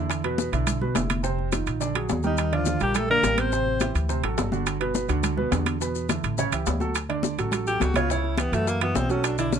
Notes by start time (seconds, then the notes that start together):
Already playing: E2 D3 D4 E4
0.10 high bongo, high conga, high timbale, maracas
0.24 B2 B3 B4, high bongo, high conga, high timbale
0.38 high bongo, high conga, low timbale, maracas
0.52 B1 D3 D4 E4, high bongo, high timbale, maracas
0.67 high bongo, high conga, low conga, high timbale, maracas
0.81 B2 B3 B4, high conga, low conga
0.95 F1 D3 D4 E4, high bongo, low bongo, high conga, high timbale, low timbale, maracas
1.10 high bongo, high conga, high timbale, maracas
1.23 C3 C4 C5, high bongo, maracas
1.38 high bongo, high conga
1.52 D#3 D#4 F4, high bongo, high conga, high timbale, low timbale, maracas
1.66 A#1, high bongo, high conga, high timbale, maracas
1.80 D3 D4 D5, high bongo, high conga, maracas
1.95 F#3 F#4 G#4, high bongo, high conga, high timbale
2.09 D#2, high bongo, low bongo, high conga, low timbale, maracas
2.23 G3 D#4 G4 A#4, high conga, maracas
2.27 D#3
2.37 high bongo, high timbale, maracas
2.52 D3 F3 D4 F4 D5, high bongo, high conga, high timbale
2.65 high bongo, high conga, low timbale, maracas
2.80 A#1 G3 G4 A#4, high bongo, high timbale, maracas
2.95 A3 A4, high bongo, high conga, low conga, high timbale, maracas
3.10 D3 A#3 D4 A#4 D5, high conga
3.23 A1 G3 G4 A#4, high bongo, low bongo, high conga, high timbale, low timbale, maracas
3.38 C4 C5, high bongo, high conga, high timbale, maracas
3.52 C3 C4 C5, high bongo, high conga, maracas
3.67 high bongo, high conga
3.80 E3 E4 G4, high bongo, high conga, high timbale, low timbale, maracas
3.95 D2, high bongo, high conga, high timbale, maracas
4.09 C3 C4 C5, high bongo, high conga, maracas
4.23 A1 F#3 F#4 A4, high bongo, high conga, high timbale
4.38 G1, high bongo, low bongo, high conga, low timbale, maracas
4.52 D3 D4 F#4, high conga, maracas
4.66 high bongo, high conga, high timbale, maracas
4.80 B2 B3 B4, high bongo, high conga, high timbale
4.95 high bongo, high conga, low timbale, maracas
5.08 D2 D3 D4 F#4, high bongo, high timbale, maracas
5.23 high bongo, high conga, low conga, high timbale, maracas
5.37 B2 B3 B4, high conga, low conga
5.51 E2 D3 D4 F#4, high bongo, low bongo, high conga, high timbale, low timbale, maracas
5.66 high bongo, high conga, high timbale, maracas
5.81 B2 B3 B4, high bongo, high conga, maracas
5.95 high bongo, high conga, maracas
6.09 D3 D4 E4, high bongo, high conga, high timbale, low timbale, maracas
6.24 A1, high bongo, high conga, high timbale, maracas
6.38 C#3 C#4 C#5, high bongo, high conga, maracas
6.52 C#2 E3 E4 G4, high bongo, high conga, high timbale, maracas
6.66 D2, high bongo, low bongo, high conga, low timbale, maracas
6.80 F#3 F#4 A4, high conga, maracas
6.95 high bongo, high conga, high timbale, maracas
7.09 D3 D4 D5, high bongo, high conga, high timbale
7.23 high bongo, high conga, low timbale, maracas
7.38 A1 F#3 F#4 A4, high bongo, high timbale, maracas
7.52 F#3 F#4 A4, high bongo, high conga, low conga, high timbale, maracas
7.66 F#3 F#4 G4 A4, high conga, maracas
7.80 C#2 F#4, high bongo, low bongo, high conga, high timbale, low timbale, maracas
7.94 C#3 C#4 F4 C#5, high conga, high timbale, maracas
8.09 C#3 C#4 E4 C#5, high bongo, high conga, maracas
8.24 high bongo, high conga
8.38 E3 B3 E4 G4, high bongo, high conga, high timbale, low timbale, maracas
8.52 F#2 E3 A3 E4 F#4, high bongo, high conga, high timbale, maracas
8.66 A#3, high bongo, high conga, maracas
8.81 E3 B3 E4 F#4, high bongo, high conga, high timbale
8.95 B1 C4, high bongo, low bongo, high conga, low timbale, maracas
9.10 F#3 C#4 F#4 A4, high conga, maracas
9.24 D4, high bongo, high timbale, maracas
9.38 D3 D4 E4 D5, high bongo, high conga, high timbale, maracas
9.53 C#4, high bongo, high conga, low timbale, maracas